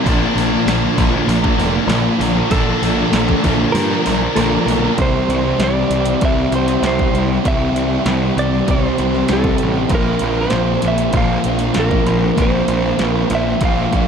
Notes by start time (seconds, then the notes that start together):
0.06 A#1 A#2 D3 F3 A#3 D4 A#4, kick, open hi-hat
0.35 A#1 A#2 F3, open hi-hat
0.39 A#3
0.52 F3 A#3 D4 A#4
0.66 A#1 A#2 D3 F3 A#3 D4 A#4, snare, open hi-hat
0.81 F3 A#3
0.97 A#1 A#2 F3 A#3 D4 A#4, kick, open hi-hat
1.12 F3 A#3, muted overdriven electric guitar stroke
1.28 A#1, open hi-hat
1.43 F3 A#3 D4 A#4, kick
1.58 F1, muted distorted electric guitar stroke, open hi-hat
1.75 muted overdriven electric guitar stroke
1.87 A#1 A#2 F3, snare, open hi-hat
1.91 D3 A#3 D4 A#4
2.04 F3 A#3
2.19 A#1 A#2 F3 A#3 D4 A#4, open hi-hat
2.37 F3 A#3 D4 A#4
2.51 A#1 A#2 D3 F3 A#3 D4 A4 A#4, kick, open hi-hat
2.82 A#1 A#2 F3, open hi-hat
2.86 A#3
2.97 F3 A#3 D4 A#4
3.13 A#1 A#2 D3 F3 A#3 D4 A#4, snare, open hi-hat
3.27 F3 A#3, kick, snare
3.42 A#1 A#2 F3 A#3 D4, kick, open hi-hat
3.46 A#4
3.57 A#3, muted overdriven electric guitar stroke
3.61 F3
3.72 G2 A#4, open hi-hat
3.90 F3 A#3 D4 A#4
4.05 A#1, muted distorted electric guitar stroke, open hi-hat
4.21 muted overdriven electric guitar stroke
4.36 A#1 A#2 D3 F3 A#3 D4 A4 A#4, open hi-hat
4.50 F3 A#3
4.65 B1 A#2 F3 A#3 D4, open hi-hat
4.70 A#4
4.82 F3 A#3 D4 A#4
4.98 C2 C3 E3 G3 C4 E4, kick, closed hi-hat
5.02 C5
5.28 C2, closed hi-hat
5.59 C2 C3 G3 C4, snare, closed hi-hat
5.64 D5
5.90 C2, closed hi-hat
6.06 closed hi-hat
6.21 C2 C3 E3 G3 C4 E4, kick, closed hi-hat
6.25 E5
6.51 C2 G3 C4, closed hi-hat
6.56 C5
6.68 closed hi-hat
6.82 C2 C3 G3, snare, closed hi-hat
6.86 C4 C5
6.99 kick
7.13 C2, closed hi-hat
7.43 C2 C3 E3 G3 C4 E4, kick, closed hi-hat
7.48 E5
7.72 C2
7.76 closed hi-hat
8.06 C2 C3 G3 C4, snare, closed hi-hat
8.36 C2 D5, closed hi-hat
8.66 C2 C3 E3 G3 C4 E4, kick, closed hi-hat
8.71 C5
8.97 C2 G3 C4, closed hi-hat
9.14 snare
9.28 C2 C3 G3 C4, snare, closed hi-hat
9.33 A4
9.44 kick
9.58 A1, closed hi-hat
9.89 A#1 A#2 F3 A#3 C4 F4, kick, closed hi-hat
9.95 A#4
10.19 A#1, closed hi-hat
10.41 C5
10.50 A#1 A#2 F3, snare, closed hi-hat
10.54 A#3
10.82 A#1, closed hi-hat
10.88 E5
10.98 closed hi-hat
11.13 A#1 A#2 F3 A#3, kick, closed hi-hat
11.17 C4 F4 F5
11.44 A#1 A#3, closed hi-hat
11.48 F3
11.59 closed hi-hat
11.74 A#1 A#2 F3 A#3, snare, closed hi-hat
11.80 A#4
11.91 kick
12.06 A#1, closed hi-hat
12.36 A#1 A#2 F3 A#3 C4 F4, kick, closed hi-hat
12.42 C5
12.68 A#1, closed hi-hat
12.97 A#1 A#2 F3 A#3, snare, closed hi-hat
13.08 A#4
13.30 A#1, closed hi-hat
13.35 E5
13.61 A#1 A#2 F3 A#3 C4 F4, kick, closed hi-hat
13.65 F5
13.91 A#1 F3 A#3, kick, closed hi-hat